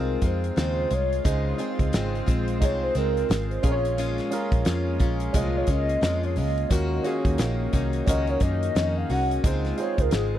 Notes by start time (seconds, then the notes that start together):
Already playing: C2 G#3 C4 D#4 F4 G#4 A#4 C5
0.22 F2 G#3 C4 F4 C5, kick, closed hi-hat
0.44 closed hi-hat
0.56 D#2 C#3 G#3 C4 F4, snare, closed hi-hat
0.90 C2 G#3 F4 C#5, closed hi-hat
1.13 closed hi-hat
1.24 C#2 C#3 G#3 C4 D#4 F4 G#4 C5 D#5, kick, closed hi-hat
1.57 G#3 C4 D#4 F4 G#4 C5, closed hi-hat
1.79 C#2, kick, closed hi-hat
1.92 G#1 C#3 G#3 C4 F4, snare, closed hi-hat
2.15 closed hi-hat
2.27 A#1 G#3 C4 F4, kick, closed hi-hat
2.48 closed hi-hat
2.60 C2 G#3 C4 D#4 F4 G#4 C#5 D#5, kick, closed hi-hat
2.83 C5
2.95 C#2 G#3 C4 F4 A#4, closed hi-hat
3.17 closed hi-hat
3.29 G#1 C#3 G#3 C4, snare, closed hi-hat
3.51 C5, closed hi-hat
3.63 A#1 G#3 A#3 C#4 F4 G#4 A#4 C#5, kick, closed hi-hat
3.71 C#5
3.85 closed hi-hat
3.98 A#2 F3 G#3 C#4 F4, closed hi-hat
4.18 snare, closed hi-hat
4.31 G#3 C#4 F4 G#4 A#4, closed hi-hat
4.52 A#1, kick, closed hi-hat
4.65 F2 F3 G#3 C#4 F4, snare, closed hi-hat
5.00 A#1 G#3 C#4 F4, kick, closed hi-hat
5.20 closed hi-hat
5.33 C2 A#2 F3 G#3 C#4 F4 G#4 D#5, kick, closed hi-hat
5.56 C#5
5.67 C#2 G#3 C#4 F4 D#5, kick, closed hi-hat
5.89 closed hi-hat
6.01 F2 F3 G#3 C#4 F4, snare, closed hi-hat
6.23 C#5, closed hi-hat
6.36 C#2 G#3 C#4 F4 D#5, open hi-hat
6.58 closed hi-hat
6.69 D#2 D#3 A#3 C#4 D#4 F4 F#4 A#4, kick, closed hi-hat
7.04 A#3 C#4 F4 F#4 G#4, closed hi-hat
7.25 D#2, kick, closed hi-hat
7.38 A#1 D#3 A#3 C#4 F#4, snare, closed hi-hat
7.73 C2 A#3 C#4 F#4, kick, closed hi-hat
7.93 closed hi-hat
8.06 C#2 D#3 A#3 C#4 F4 F#4 A#4 D#5, kick, closed hi-hat
8.27 C#5, closed hi-hat
8.40 F#2 A#3 C#4 F#4 D#5, kick, closed hi-hat
8.63 closed hi-hat
8.75 F2 D#3 A#3 C#4 F#4, snare, closed hi-hat
8.97 F5
9.10 C2 A#3 C#4 F#4 F#5, open hi-hat
9.31 closed hi-hat
9.43 C#2 C#3 G#3 C4 D#4 F4 G#4 C5, kick, closed hi-hat
9.65 snare, closed hi-hat
9.77 G#3 C4 D#4 F4 G#4 C5, closed hi-hat
9.81 C#5
9.98 C#2 A#4, kick, closed hi-hat
10.11 G#1 C#3 G#3 C4 F4 G#4, snare, closed hi-hat
10.35 C5